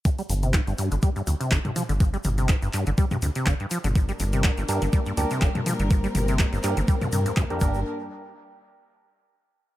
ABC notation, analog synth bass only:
X:1
M:4/4
L:1/16
Q:"Swing 16ths" 1/4=123
K:Gm
V:1 name="Analog synth bass" clef=bass
z2 G,,,2 z G,,, z G,,, z2 D,, z G,,, z2 G,,,- | G,,, z G,,,2 z G,,, z G,,, z2 D,, z G,,, z2 G,,,- | G,,, z G,,,2 z G,,, z G,,, z2 D,, z G,,, z2 G,,,- | G,,, z G,,,2 z G,,, z G,,, z2 G,, z D,, z G,,,2 |
z16 |]